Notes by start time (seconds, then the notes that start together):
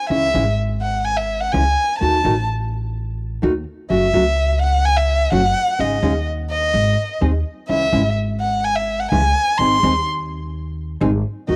0.10 C#2 C#3 E3 G#3 C#4 E4 E5
0.34 G#1 C#3 E3 G#3 C#4 E4
0.82 F#5
1.05 G#5
1.17 E5
1.41 F#5
1.52 C#2 C#3 E3 G#3 C#4 E4 G#5
1.99 D#2 D#3 A3 D#4 F#4 A5
2.24 A1 D#3 A3 D#4 F#4
3.42 D#2 D#3 A3 D#4 F#4
3.89 F#1 C#3 F#3 A3 C#4 F#4 E5
4.14 C#2 C#3 F#3 A3 C#4 F#4
4.62 F#5
4.85 G#5
4.97 E5
5.31 F#1 C#3 F#3 A3 C#4 F#4 F#5
5.78 G#1 C#3 G#3 C#4 D#4 G#4 D#5
6.02 D#2 C#3 G#3 C#4 D#4 G#4
6.50 D#5
6.74 G#1
7.21 D#2 D#3 G#3 C4 D#4 G#4
7.69 C#2 C#3 E3 G#3 C#4 E4 E5
7.92 G#1 C#3 E3 G#3 C#4 E4
8.40 F#5
8.64 G#5
8.75 E5
9.00 F#5
9.11 C#2 C#3 E3 G#3 C#4 E4 G#5
9.58 G#1 D#3 G#3 C4 D#4 G#4 C6
9.83 D#2 D#3 G#3 C4 D#4 G#4
11.00 G#1 D#3 G#3 C4 D#4 G#4
11.48 D#2 D#3 A3 D#4 F#4 D#5